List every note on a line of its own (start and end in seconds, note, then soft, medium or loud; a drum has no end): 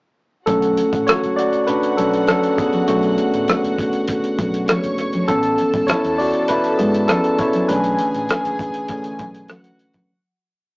0.46 0.74 B1 loud
0.46 0.87 D3 soft
0.46 0.87 A3 soft
0.46 1.04 C#4 medium
0.46 4.65 F#4 medium
0.46 1.03 A4 medium
0.46 4.65 F#5 medium
0.46 kick medium
0.46 closed hi-hat medium
0.46 muted conga soft
0.62 closed hi-hat soft
0.77 closed hi-hat medium
0.77 muted conga soft
0.93 1.06 A1 medium
0.93 kick medium
0.93 closed hi-hat medium
1.07 1.36 F#4 medium
1.07 1.38 C#5 medium
1.07 muted fingered electric bass stroke soft
1.07 cross-stick loud
1.07 closed hi-hat medium
1.07 high conga medium
1.23 1.50 F#1 medium
1.23 closed hi-hat soft
1.36 1.66 F#4 medium
1.36 1.68 D5 medium
1.36 closed hi-hat medium
1.53 closed hi-hat soft
1.67 1.82 D4 medium
1.67 1.80 B4 medium
1.67 closed hi-hat medium
1.67 low conga medium
1.83 closed hi-hat medium
1.97 2.25 B1 medium
1.97 2.26 C#4 medium
1.97 2.27 A4 medium
1.97 closed hi-hat medium
1.97 muted conga soft
2.13 closed hi-hat medium
2.27 2.57 C#4 medium
2.27 2.59 A4 medium
2.27 cross-stick medium
2.27 closed hi-hat medium
2.27 high conga medium
2.43 closed hi-hat soft
2.58 2.73 B3 medium
2.58 2.71 G#4 medium
2.58 kick medium
2.58 closed hi-hat medium
2.73 closed hi-hat soft
2.73 high conga medium
2.88 3.15 B1 loud
2.88 5.25 D3 soft
2.88 4.65 A3 medium
2.88 5.25 C#4 medium
2.88 4.64 F#4 medium
2.88 closed hi-hat medium
2.88 muted conga soft
3.03 closed hi-hat soft
3.18 closed hi-hat medium
3.33 3.47 A1 medium
3.33 closed hi-hat soft
3.48 muted fingered electric bass stroke soft
3.48 cross-stick medium
3.48 closed hi-hat medium
3.48 high conga medium
3.63 3.90 F#1 medium
3.63 closed hi-hat soft
3.78 kick medium
3.78 closed hi-hat medium
3.93 closed hi-hat medium
4.08 kick medium
4.08 cross-stick soft
4.08 closed hi-hat medium
4.24 closed hi-hat medium
4.39 4.65 B1 medium
4.39 kick medium
4.39 closed hi-hat medium
4.39 muted conga soft
4.54 closed hi-hat medium
4.68 5.27 C#5 medium
4.68 5.27 C#6 medium
4.68 muted fingered electric bass stroke soft
4.68 cross-stick medium
4.68 closed hi-hat medium
4.68 high conga medium
4.83 5.10 F#1 medium
4.83 closed hi-hat soft
4.98 cross-stick soft
4.98 closed hi-hat medium
5.13 closed hi-hat soft
5.13 high conga medium
5.28 5.56 A1 loud
5.28 7.65 C#3 medium
5.28 7.66 E3 soft
5.28 6.78 B3 medium
5.28 5.85 C#4 medium
5.28 5.90 A4 medium
5.28 7.65 A4 medium
5.28 7.65 A5 medium
5.28 kick medium
5.28 closed hi-hat medium
5.28 muted conga soft
5.43 closed hi-hat soft
5.58 closed hi-hat medium
5.58 muted conga soft
5.73 5.87 G#1 medium
5.73 kick medium
5.73 closed hi-hat soft
5.87 6.17 E4 medium
5.87 6.19 C#5 medium
5.87 muted fingered electric bass stroke soft
5.87 cross-stick medium
5.87 closed hi-hat medium
5.87 high conga medium
6.04 6.31 E2 medium
6.04 closed hi-hat soft
6.18 6.48 F#4 medium
6.18 6.50 D5 medium
6.18 open hi-hat medium
6.34 closed hi-hat medium
6.48 6.78 E4 medium
6.48 6.77 B4 loud
6.48 closed hi-hat medium
6.48 low conga medium
6.64 closed hi-hat medium
6.78 7.06 G#2 medium
6.78 7.07 B3 medium
6.78 7.09 G#4 medium
6.78 closed hi-hat medium
6.78 muted conga soft
6.94 closed hi-hat medium
7.08 7.38 C#4 medium
7.08 7.36 A4 medium
7.08 cross-stick medium
7.08 closed hi-hat medium
7.08 high conga medium
7.24 closed hi-hat soft
7.38 7.53 E4 medium
7.38 7.52 C#5 medium
7.38 kick medium
7.38 closed hi-hat medium
7.53 closed hi-hat soft
7.53 high conga medium
7.68 7.96 B1 loud
7.68 8.88 D3 medium
7.68 8.88 E3 soft
7.68 8.88 A3 soft
7.68 8.89 C#4 medium
7.68 9.46 D4 medium
7.68 9.46 G#4 medium
7.68 9.45 B4 medium
7.68 9.46 G#5 medium
7.68 closed hi-hat medium
7.68 muted conga soft
7.84 closed hi-hat soft
7.99 closed hi-hat medium
7.99 muted conga soft
8.14 8.28 A1 medium
8.14 closed hi-hat soft
8.29 muted fingered electric bass stroke soft
8.29 cross-stick loud
8.29 closed hi-hat medium
8.29 high conga medium
8.45 8.71 F#1 medium
8.45 closed hi-hat soft
8.59 kick medium
8.59 closed hi-hat medium
8.74 closed hi-hat medium
8.88 9.16 D3 soft
8.88 9.16 E3 soft
8.88 9.16 A3 soft
8.88 9.17 C#4 medium
8.88 kick medium
8.88 cross-stick soft
8.88 closed hi-hat medium
9.04 closed hi-hat medium
9.19 9.46 B1 medium
9.19 kick medium
9.19 closed hi-hat medium
9.19 muted conga soft
9.19 low conga medium
9.34 closed hi-hat medium
9.48 10.08 F#4 medium
9.48 10.09 F#5 medium
9.48 cross-stick medium
9.48 closed hi-hat medium
9.48 high conga medium
9.64 closed hi-hat medium
9.79 closed hi-hat medium
9.94 kick medium
9.94 closed hi-hat soft
9.94 high conga medium